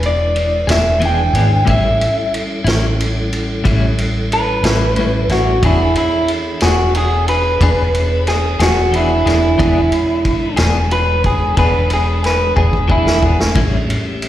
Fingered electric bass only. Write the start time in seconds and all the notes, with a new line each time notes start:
Already playing: E1
0.67 E1
1.33 G#1
1.68 A1
2.65 A1
3.65 A1
4.63 A1
5.29 A1
5.63 E1
6.62 E1
7.61 E1
8.59 E1
9.26 E1
9.60 E1
10.58 E1
11.57 E1
12.57 E1
13.23 E1
13.56 A1